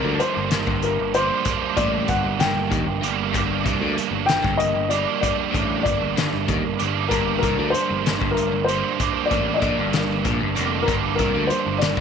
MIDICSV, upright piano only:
0, 0, Header, 1, 2, 480
1, 0, Start_track
1, 0, Key_signature, -2, "minor"
1, 0, Tempo, 628272
1, 1115, Time_signature, 6, 3, 24, 8
1, 9172, End_track
2, 0, Start_track
2, 0, Title_t, "Upright piano"
2, 0, Program_c, 0, 0
2, 0, Note_on_c, 0, 70, 75
2, 150, Note_on_c, 0, 72, 74
2, 161, Note_off_c, 0, 70, 0
2, 635, Note_on_c, 0, 70, 74
2, 647, Note_off_c, 0, 72, 0
2, 876, Note_on_c, 0, 72, 99
2, 882, Note_off_c, 0, 70, 0
2, 1349, Note_on_c, 0, 74, 86
2, 1371, Note_off_c, 0, 72, 0
2, 1592, Note_on_c, 0, 78, 82
2, 1600, Note_off_c, 0, 74, 0
2, 1830, Note_on_c, 0, 79, 81
2, 1842, Note_off_c, 0, 78, 0
2, 2344, Note_off_c, 0, 79, 0
2, 3254, Note_on_c, 0, 79, 98
2, 3495, Note_on_c, 0, 75, 90
2, 3514, Note_off_c, 0, 79, 0
2, 3730, Note_off_c, 0, 75, 0
2, 3738, Note_on_c, 0, 74, 78
2, 3971, Note_off_c, 0, 74, 0
2, 3983, Note_on_c, 0, 74, 75
2, 4443, Note_off_c, 0, 74, 0
2, 4455, Note_on_c, 0, 74, 80
2, 5413, Note_on_c, 0, 70, 79
2, 5456, Note_off_c, 0, 74, 0
2, 5631, Note_off_c, 0, 70, 0
2, 5642, Note_on_c, 0, 70, 81
2, 5885, Note_on_c, 0, 72, 82
2, 5908, Note_off_c, 0, 70, 0
2, 6349, Note_on_c, 0, 70, 74
2, 6397, Note_off_c, 0, 72, 0
2, 6605, Note_on_c, 0, 72, 80
2, 6621, Note_off_c, 0, 70, 0
2, 7072, Note_on_c, 0, 74, 81
2, 7116, Note_off_c, 0, 72, 0
2, 7267, Note_off_c, 0, 74, 0
2, 7291, Note_on_c, 0, 75, 62
2, 7312, Note_on_c, 0, 74, 72
2, 7351, Note_off_c, 0, 75, 0
2, 8270, Note_on_c, 0, 70, 83
2, 8323, Note_off_c, 0, 74, 0
2, 8329, Note_off_c, 0, 70, 0
2, 8521, Note_on_c, 0, 70, 77
2, 8765, Note_on_c, 0, 72, 76
2, 8786, Note_off_c, 0, 70, 0
2, 9004, Note_on_c, 0, 74, 73
2, 9027, Note_off_c, 0, 72, 0
2, 9172, Note_off_c, 0, 74, 0
2, 9172, End_track
0, 0, End_of_file